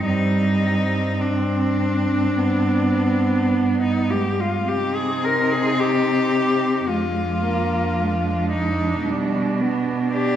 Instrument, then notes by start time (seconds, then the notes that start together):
cello
0.04 G2 G3 C4 D#4
1.20 C4 D4
2.37 B3
3.53 B3
3.81 D#4
4.10 G#3 G4
4.41 F4
4.68 C3 C4 D#4 G4
4.96 G#4
5.25 A#4
5.52 G#4
5.80 G4
6.87 F2 G#3 D4 F4
7.44 A#3
8.00 G#3
8.51 D#4
9.05 B2 G3
9.61 B3
10.13 D4 G4